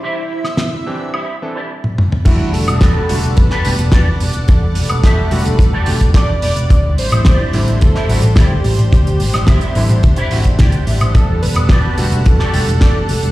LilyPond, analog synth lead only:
\new Staff \with { instrumentName = "Analog synth lead" } { \time 4/4 \key e \minor \tempo 4 = 108 e'2. r4 | e'8 a'4. b'8 b'4 r8 | a'2. d''8 d''8~ | d''8 c''4 r8 a'4 g'4 |
g'4. r2 r8 | a'8 b'4. a'2 | }